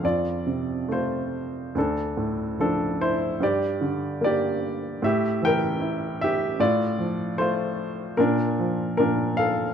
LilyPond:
<<
  \new Staff \with { instrumentName = "Upright piano" } { \time 4/4 \key f \major \tempo 4 = 74 <f' d''>4 <f' c''>4 <d' a'>4 <d' a'>8 <e' c''>8 | <g' d''>4 <g' d''>4 <g' e''>8 <bes' g''>4 <g' e''>8 | <f' d''>4 <f' c''>4 <d' bes'>4 <d' bes'>8 <a' f''>8 | }
  \new Staff \with { instrumentName = "Upright piano" } { \clef bass \time 4/4 \key f \major f,8 c8 a4 d,8 a,8 f4 | g,8 d8 bes4 a,8 e8 e'4 | a,8 f8 a4 bes,8 f8 bes,4 | }
>>